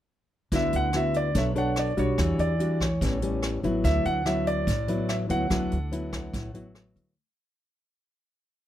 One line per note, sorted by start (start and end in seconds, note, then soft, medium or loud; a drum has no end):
0.52 0.71 D2 medium
0.52 1.33 D3 medium
0.52 0.90 B3 soft
0.52 0.91 E4 medium
0.52 0.91 F#4 medium
0.52 0.75 E5 medium
0.52 kick medium
0.52 closed hi-hat medium
0.72 1.31 D2 medium
0.72 0.96 F#5 medium
0.72 closed hi-hat soft
0.93 1.33 B3 medium
0.93 1.34 E4 medium
0.93 1.34 F#4 medium
0.93 1.16 E5 medium
0.93 cross-stick medium
0.93 closed hi-hat soft
1.14 1.37 D5 medium
1.14 closed hi-hat soft
1.35 1.93 B1 medium
1.35 1.97 B3 soft
1.35 1.52 D4 soft
1.35 1.53 A4 soft
1.35 1.53 C#5 medium
1.35 1.43 E5 medium
1.35 kick medium
1.35 closed hi-hat medium
1.55 1.94 D4 medium
1.55 1.94 A4 medium
1.55 1.94 C#5 medium
1.55 1.78 F#5 medium
1.55 closed hi-hat soft
1.76 1.99 D5 medium
1.76 cross-stick medium
1.76 closed hi-hat soft
1.97 2.17 B1 medium
1.97 2.56 G3 medium
1.97 2.56 D4 medium
1.97 2.56 F#4 medium
1.97 2.41 C#5 medium
1.97 closed hi-hat soft
2.18 2.38 E2 medium
2.18 2.99 E3 medium
2.18 kick medium
2.18 cross-stick medium
2.18 closed hi-hat medium
2.38 2.97 E2 medium
2.38 2.82 D5 medium
2.38 closed hi-hat soft
2.59 2.87 G3 medium
2.59 2.87 D4 medium
2.59 2.88 F#4 medium
2.59 closed hi-hat soft
2.81 3.20 C#5 medium
2.81 kick medium
2.81 cross-stick medium
2.81 closed hi-hat soft
3.01 3.60 A1 loud
3.01 3.82 A2 soft
3.01 3.19 G3 medium
3.01 3.19 B3 soft
3.01 3.19 C#4 medium
3.01 kick medium
3.01 closed hi-hat medium
3.22 3.60 G3 medium
3.22 3.61 B3 medium
3.22 3.61 C#4 medium
3.22 closed hi-hat soft
3.43 cross-stick medium
3.43 closed hi-hat soft
3.63 3.83 A1 medium
3.63 4.23 F#3 medium
3.63 4.23 B3 medium
3.63 4.23 E4 medium
3.63 closed hi-hat soft
3.84 4.04 D2 medium
3.84 4.65 D3 medium
3.84 4.04 E5 medium
3.84 kick medium
3.84 closed hi-hat soft
4.05 4.63 D2 medium
4.05 4.27 F#5 medium
4.05 closed hi-hat soft
4.26 4.67 F#3 medium
4.26 4.67 B3 medium
4.26 4.68 E4 medium
4.26 4.47 E5 medium
4.26 cross-stick medium
4.26 closed hi-hat soft
4.47 5.11 D5 medium
4.47 closed hi-hat soft
4.67 5.26 A1 medium
4.67 5.48 A2 medium
4.67 kick medium
4.67 closed hi-hat medium
4.88 5.26 F#3 soft
4.88 5.27 B3 soft
4.88 5.27 E4 medium
4.88 closed hi-hat soft
5.09 5.14 E5 medium
5.09 cross-stick medium
5.09 closed hi-hat soft
5.29 5.49 D2 medium
5.29 5.47 F#3 medium
5.29 5.47 B3 medium
5.29 5.47 E4 medium
5.29 6.72 F#5 medium
5.29 closed hi-hat soft
5.50 5.70 D2 medium
5.50 6.31 D3 medium
5.50 5.77 F#3 medium
5.50 5.77 B3 medium
5.50 5.78 E4 medium
5.50 kick medium
5.50 cross-stick medium
5.50 closed hi-hat medium
5.72 6.30 D2 medium
5.72 closed hi-hat soft
5.92 6.51 F#3 medium
5.92 6.51 B3 medium
5.92 6.51 E4 medium
5.92 closed hi-hat soft
6.13 kick medium
6.13 cross-stick medium
6.13 closed hi-hat soft
6.33 6.92 A1 medium
6.33 7.15 A2 medium
6.33 kick medium
6.33 closed hi-hat medium
6.54 7.13 F#3 medium
6.54 7.14 B3 medium
6.54 7.14 E4 medium
6.54 closed hi-hat soft
6.75 cross-stick medium
6.75 closed hi-hat soft
6.96 7.15 D2 medium
6.96 closed hi-hat soft